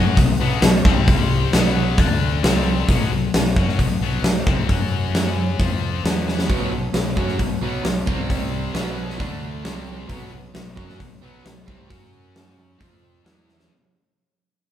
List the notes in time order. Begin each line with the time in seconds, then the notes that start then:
Already playing: F#2 F#3 C#4 F#4
0.17 B1 B2 F#3, kick, open hi-hat
0.39 B1 B2 F#3 B3
0.62 B1 B2 F#3, snare, open hi-hat
0.85 C2 C3 G3 C4, kick
1.08 kick, open hi-hat
1.53 B1 B2 F#3 B3, snare, open hi-hat
1.98 D2 D3 A3 D4, kick, open hi-hat
2.43 C2 C3 G3 C4, snare, open hi-hat
2.88 B1 B2 F#3 B3, kick, open hi-hat
3.11 B1 B2 F#3
3.33 B1 B2 F#3, snare, open hi-hat
3.56 F#2 F#3 C#4 F#4, kick
3.69 snare
3.79 B1 B2 F#3, kick, open hi-hat
4.00 B1 B2 F#3 B3
4.22 B1 B2 F#3, snare, open hi-hat
4.47 C2 C3 G3 C4, kick
4.69 F#2 F#3 C#4 F#4, kick, open hi-hat
5.15 snare, open hi-hat
5.59 F2 F3 C4 F4, kick, open hi-hat
6.04 E2 E3 B3 E4, snare, open hi-hat
6.28 snare
6.39 snare
6.49 B1 B2 F#3 B3, kick, open hi-hat
6.72 B1 B2 F#3
6.94 B1 B2 F#3, snare, open hi-hat
7.17 F#2 F#3 C#4 F#4, kick
7.28 snare
7.39 B1 B2 F#3, kick, open hi-hat
7.61 B1 B2 F#3 B3
7.84 B1 B2 F#3, snare, open hi-hat
8.07 C2 C3 G3 C4, kick
8.30 kick, open hi-hat
8.74 B1 B2 F#3 B3, snare, open hi-hat
9.10 snare
9.20 D2 D3 A3 D4, kick, open hi-hat
9.65 C2 C3 G3 C4, snare, open hi-hat
10.09 B1 B2 F#3 B3, kick, open hi-hat
10.33 B1 B2 F#3
10.54 B1 B2 F#3, snare, open hi-hat
10.77 F#2 F#3 C#4 F#4, kick
10.89 snare
11.00 B1 B2 F#3, kick, open hi-hat
11.23 B1 B2 F#3 B3
11.45 B1 B2 F#3, snare, open hi-hat
11.68 C2 C3 G3 C4, kick
11.90 F#2 F#3 C#4 F#4, kick, open hi-hat
12.36 snare, open hi-hat
12.80 F2 F3 C4 F4, kick, open hi-hat
13.25 E2 E3 B3 E4, snare, open hi-hat
13.49 snare
13.60 snare